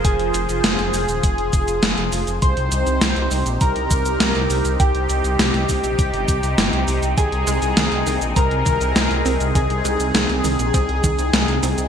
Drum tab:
HH |xxxxxxoxxxxxxxox|xxxxxxoxxxxxxxox|xxxxxxoxxxxxxxox|xxxxxxoxxxxxxxox|
SH |x-xxx-xxx-xxx-xx|x-xxx-xxx-xxx-xx|x-xxx-xxx-xxx-xx|x-xxx-xxx-xxx-xx|
SD |----oo------o---|----o-------o---|----oo------o---|----o-------o---|
BD |o-------o-o-----|o-------o-o-----|o-----o-o-o-----|o-------o-o-----|

HH |xxxxxxoxxxxxxxox|
SH |x-xxx-xxx-xxx-xx|
SD |----oo------o---|
BD |o-------o-o-----|